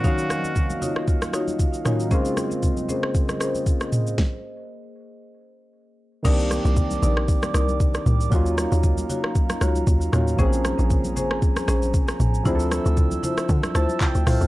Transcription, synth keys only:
0, 0, Header, 1, 2, 480
1, 0, Start_track
1, 0, Tempo, 517241
1, 41, Time_signature, 4, 2, 24, 8
1, 13428, End_track
2, 0, Start_track
2, 0, Title_t, "Synth keys"
2, 0, Program_c, 0, 88
2, 0, Control_c, 0, 64, 127
2, 18, Note_on_c, 0, 51, 66
2, 30, Note_on_c, 0, 54, 58
2, 43, Note_on_c, 0, 58, 61
2, 53, Control_c, 0, 64, 0
2, 57, Note_on_c, 0, 61, 61
2, 69, Note_on_c, 0, 77, 74
2, 230, Control_c, 0, 64, 127
2, 1675, Note_off_c, 0, 51, 0
2, 1682, Note_off_c, 0, 54, 0
2, 1688, Note_off_c, 0, 58, 0
2, 1695, Note_off_c, 0, 61, 0
2, 1702, Note_off_c, 0, 77, 0
2, 1712, Note_on_c, 0, 51, 63
2, 1718, Note_on_c, 0, 54, 54
2, 1724, Note_on_c, 0, 58, 55
2, 1731, Note_on_c, 0, 61, 55
2, 1737, Note_on_c, 0, 63, 67
2, 1939, Note_on_c, 0, 49, 80
2, 1952, Note_on_c, 0, 56, 69
2, 1954, Note_off_c, 0, 58, 0
2, 1956, Note_off_c, 0, 51, 0
2, 1959, Note_off_c, 0, 54, 0
2, 1965, Note_on_c, 0, 58, 73
2, 1966, Note_off_c, 0, 61, 0
2, 1969, Note_off_c, 0, 63, 0
2, 1975, Control_c, 0, 64, 0
2, 1978, Note_on_c, 0, 60, 73
2, 1990, Note_on_c, 0, 65, 84
2, 2153, Control_c, 0, 64, 127
2, 3833, Note_off_c, 0, 49, 0
2, 3839, Note_off_c, 0, 56, 0
2, 3846, Note_off_c, 0, 58, 0
2, 3852, Note_off_c, 0, 60, 0
2, 3858, Note_off_c, 0, 65, 0
2, 3892, Control_c, 0, 64, 0
2, 5779, Note_on_c, 0, 51, 76
2, 5792, Note_on_c, 0, 58, 74
2, 5804, Note_on_c, 0, 60, 72
2, 5817, Note_on_c, 0, 62, 68
2, 5830, Note_on_c, 0, 67, 82
2, 5947, Control_c, 0, 64, 127
2, 7673, Note_off_c, 0, 51, 0
2, 7679, Note_off_c, 0, 58, 0
2, 7685, Note_off_c, 0, 60, 0
2, 7692, Note_off_c, 0, 62, 0
2, 7698, Note_off_c, 0, 67, 0
2, 7698, Note_on_c, 0, 54, 80
2, 7712, Note_on_c, 0, 58, 72
2, 7724, Note_on_c, 0, 61, 74
2, 7734, Control_c, 0, 64, 0
2, 7737, Note_on_c, 0, 63, 74
2, 7750, Note_on_c, 0, 65, 87
2, 7889, Control_c, 0, 64, 127
2, 9356, Note_off_c, 0, 54, 0
2, 9362, Note_off_c, 0, 58, 0
2, 9369, Note_off_c, 0, 61, 0
2, 9375, Note_off_c, 0, 63, 0
2, 9382, Note_off_c, 0, 65, 0
2, 9392, Note_on_c, 0, 54, 60
2, 9398, Note_on_c, 0, 58, 54
2, 9404, Note_on_c, 0, 61, 57
2, 9411, Note_on_c, 0, 63, 55
2, 9417, Note_on_c, 0, 65, 68
2, 9618, Note_on_c, 0, 53, 78
2, 9620, Note_off_c, 0, 58, 0
2, 9631, Note_on_c, 0, 58, 74
2, 9636, Note_off_c, 0, 54, 0
2, 9642, Note_off_c, 0, 61, 0
2, 9644, Note_on_c, 0, 60, 74
2, 9646, Note_off_c, 0, 63, 0
2, 9649, Note_off_c, 0, 65, 0
2, 9652, Control_c, 0, 64, 0
2, 9657, Note_on_c, 0, 61, 74
2, 9669, Note_on_c, 0, 68, 90
2, 9815, Control_c, 0, 64, 127
2, 11512, Note_off_c, 0, 53, 0
2, 11519, Note_off_c, 0, 58, 0
2, 11525, Note_off_c, 0, 60, 0
2, 11532, Note_off_c, 0, 61, 0
2, 11538, Note_off_c, 0, 68, 0
2, 11538, Note_on_c, 0, 53, 81
2, 11551, Note_on_c, 0, 60, 72
2, 11564, Note_on_c, 0, 62, 72
2, 11571, Control_c, 0, 64, 0
2, 11577, Note_on_c, 0, 64, 74
2, 11590, Note_on_c, 0, 68, 70
2, 11639, Note_off_c, 0, 68, 0
2, 11647, Note_on_c, 0, 69, 91
2, 11738, Control_c, 0, 64, 127
2, 12764, Note_on_c, 0, 81, 79
2, 12986, Note_off_c, 0, 81, 0
2, 13004, Note_on_c, 0, 79, 77
2, 13225, Note_off_c, 0, 79, 0
2, 13244, Note_on_c, 0, 77, 77
2, 13428, Note_off_c, 0, 53, 0
2, 13428, Note_off_c, 0, 60, 0
2, 13428, Note_off_c, 0, 62, 0
2, 13428, Note_off_c, 0, 64, 0
2, 13428, Note_off_c, 0, 69, 0
2, 13428, Note_off_c, 0, 77, 0
2, 13428, End_track
0, 0, End_of_file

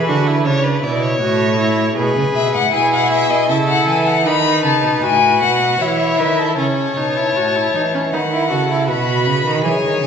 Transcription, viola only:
0, 0, Header, 1, 2, 480
1, 0, Start_track
1, 0, Key_signature, 3, "major"
1, 0, Tempo, 758534
1, 1245, Time_signature, 3, 2, 24, 8
1, 2693, Tempo, 769231
1, 6320, End_track
2, 0, Start_track
2, 0, Title_t, "Viola"
2, 0, Program_c, 0, 41
2, 46, Note_on_c, 0, 66, 78
2, 171, Note_on_c, 0, 64, 70
2, 181, Note_off_c, 0, 66, 0
2, 287, Note_on_c, 0, 62, 71
2, 296, Note_off_c, 0, 64, 0
2, 519, Note_off_c, 0, 62, 0
2, 523, Note_on_c, 0, 64, 74
2, 759, Note_off_c, 0, 64, 0
2, 764, Note_on_c, 0, 66, 82
2, 992, Note_off_c, 0, 66, 0
2, 996, Note_on_c, 0, 64, 79
2, 1236, Note_off_c, 0, 64, 0
2, 1240, Note_on_c, 0, 68, 84
2, 1715, Note_off_c, 0, 68, 0
2, 1719, Note_on_c, 0, 64, 89
2, 2194, Note_off_c, 0, 64, 0
2, 2210, Note_on_c, 0, 64, 90
2, 2683, Note_off_c, 0, 64, 0
2, 2692, Note_on_c, 0, 63, 84
2, 3179, Note_on_c, 0, 66, 82
2, 3188, Note_off_c, 0, 63, 0
2, 3664, Note_on_c, 0, 64, 91
2, 3673, Note_off_c, 0, 66, 0
2, 4142, Note_off_c, 0, 64, 0
2, 4145, Note_on_c, 0, 61, 68
2, 4386, Note_on_c, 0, 63, 69
2, 4395, Note_off_c, 0, 61, 0
2, 4508, Note_on_c, 0, 64, 67
2, 4518, Note_off_c, 0, 63, 0
2, 4629, Note_on_c, 0, 66, 72
2, 4638, Note_off_c, 0, 64, 0
2, 4753, Note_on_c, 0, 64, 69
2, 4762, Note_off_c, 0, 66, 0
2, 4869, Note_off_c, 0, 64, 0
2, 4873, Note_on_c, 0, 63, 76
2, 4919, Note_off_c, 0, 63, 0
2, 4993, Note_on_c, 0, 61, 73
2, 5039, Note_off_c, 0, 61, 0
2, 5113, Note_on_c, 0, 63, 80
2, 5159, Note_off_c, 0, 63, 0
2, 5231, Note_on_c, 0, 64, 77
2, 5339, Note_off_c, 0, 64, 0
2, 5343, Note_on_c, 0, 66, 78
2, 5457, Note_off_c, 0, 66, 0
2, 5465, Note_on_c, 0, 64, 78
2, 5575, Note_off_c, 0, 64, 0
2, 5578, Note_on_c, 0, 66, 74
2, 6042, Note_off_c, 0, 66, 0
2, 6056, Note_on_c, 0, 68, 76
2, 6320, Note_off_c, 0, 68, 0
2, 6320, End_track
0, 0, End_of_file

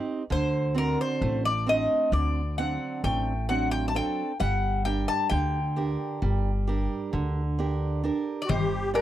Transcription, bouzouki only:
0, 0, Header, 1, 2, 480
1, 0, Start_track
1, 0, Key_signature, -2, "minor"
1, 0, Tempo, 909091
1, 163, Time_signature, 9, 3, 24, 8
1, 4759, End_track
2, 0, Start_track
2, 0, Title_t, "Bouzouki"
2, 0, Program_c, 0, 25
2, 170, Note_on_c, 0, 72, 75
2, 409, Note_off_c, 0, 72, 0
2, 411, Note_on_c, 0, 70, 77
2, 519, Note_off_c, 0, 70, 0
2, 533, Note_on_c, 0, 72, 72
2, 752, Note_off_c, 0, 72, 0
2, 768, Note_on_c, 0, 74, 82
2, 877, Note_off_c, 0, 74, 0
2, 893, Note_on_c, 0, 75, 81
2, 1112, Note_off_c, 0, 75, 0
2, 1126, Note_on_c, 0, 74, 81
2, 1360, Note_off_c, 0, 74, 0
2, 1362, Note_on_c, 0, 78, 73
2, 1587, Note_off_c, 0, 78, 0
2, 1605, Note_on_c, 0, 79, 79
2, 1828, Note_off_c, 0, 79, 0
2, 1842, Note_on_c, 0, 78, 77
2, 1959, Note_off_c, 0, 78, 0
2, 1961, Note_on_c, 0, 79, 87
2, 2040, Note_off_c, 0, 79, 0
2, 2048, Note_on_c, 0, 81, 67
2, 2085, Note_off_c, 0, 81, 0
2, 2092, Note_on_c, 0, 79, 88
2, 2322, Note_off_c, 0, 79, 0
2, 2324, Note_on_c, 0, 78, 88
2, 2559, Note_off_c, 0, 78, 0
2, 2561, Note_on_c, 0, 79, 90
2, 2681, Note_off_c, 0, 79, 0
2, 2683, Note_on_c, 0, 81, 91
2, 2794, Note_off_c, 0, 81, 0
2, 2796, Note_on_c, 0, 79, 88
2, 4218, Note_off_c, 0, 79, 0
2, 4444, Note_on_c, 0, 74, 58
2, 4482, Note_off_c, 0, 74, 0
2, 4484, Note_on_c, 0, 72, 81
2, 4724, Note_off_c, 0, 72, 0
2, 4726, Note_on_c, 0, 70, 73
2, 4759, Note_off_c, 0, 70, 0
2, 4759, End_track
0, 0, End_of_file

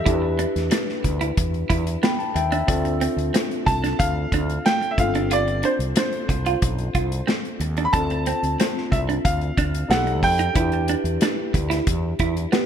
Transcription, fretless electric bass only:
0, 0, Header, 1, 2, 480
1, 0, Start_track
1, 0, Tempo, 655738
1, 48, Time_signature, 4, 2, 24, 8
1, 9266, End_track
2, 0, Start_track
2, 0, Title_t, "Fretless electric bass"
2, 0, Program_c, 0, 35
2, 45, Note_on_c, 0, 40, 85
2, 327, Note_off_c, 0, 40, 0
2, 408, Note_on_c, 0, 40, 77
2, 501, Note_off_c, 0, 40, 0
2, 764, Note_on_c, 0, 38, 84
2, 953, Note_off_c, 0, 38, 0
2, 1006, Note_on_c, 0, 40, 80
2, 1194, Note_off_c, 0, 40, 0
2, 1242, Note_on_c, 0, 40, 87
2, 1432, Note_off_c, 0, 40, 0
2, 1722, Note_on_c, 0, 39, 80
2, 1911, Note_off_c, 0, 39, 0
2, 1964, Note_on_c, 0, 38, 97
2, 2246, Note_off_c, 0, 38, 0
2, 2317, Note_on_c, 0, 38, 78
2, 2414, Note_off_c, 0, 38, 0
2, 2682, Note_on_c, 0, 36, 83
2, 2871, Note_off_c, 0, 36, 0
2, 2924, Note_on_c, 0, 38, 86
2, 3112, Note_off_c, 0, 38, 0
2, 3160, Note_on_c, 0, 38, 84
2, 3349, Note_off_c, 0, 38, 0
2, 3645, Note_on_c, 0, 31, 85
2, 4114, Note_off_c, 0, 31, 0
2, 4238, Note_on_c, 0, 36, 66
2, 4335, Note_off_c, 0, 36, 0
2, 4602, Note_on_c, 0, 36, 80
2, 4791, Note_off_c, 0, 36, 0
2, 4847, Note_on_c, 0, 35, 88
2, 5034, Note_off_c, 0, 35, 0
2, 5085, Note_on_c, 0, 36, 86
2, 5273, Note_off_c, 0, 36, 0
2, 5561, Note_on_c, 0, 39, 70
2, 5751, Note_off_c, 0, 39, 0
2, 5806, Note_on_c, 0, 38, 99
2, 6088, Note_off_c, 0, 38, 0
2, 6169, Note_on_c, 0, 38, 72
2, 6262, Note_off_c, 0, 38, 0
2, 6528, Note_on_c, 0, 36, 89
2, 6715, Note_off_c, 0, 36, 0
2, 6769, Note_on_c, 0, 38, 80
2, 6956, Note_off_c, 0, 38, 0
2, 7008, Note_on_c, 0, 38, 78
2, 7195, Note_off_c, 0, 38, 0
2, 7243, Note_on_c, 0, 35, 90
2, 7483, Note_off_c, 0, 35, 0
2, 7483, Note_on_c, 0, 41, 81
2, 7673, Note_off_c, 0, 41, 0
2, 7727, Note_on_c, 0, 40, 90
2, 8009, Note_off_c, 0, 40, 0
2, 8081, Note_on_c, 0, 40, 79
2, 8178, Note_off_c, 0, 40, 0
2, 8447, Note_on_c, 0, 38, 87
2, 8635, Note_off_c, 0, 38, 0
2, 8690, Note_on_c, 0, 40, 85
2, 8877, Note_off_c, 0, 40, 0
2, 8926, Note_on_c, 0, 40, 89
2, 9115, Note_off_c, 0, 40, 0
2, 9266, End_track
0, 0, End_of_file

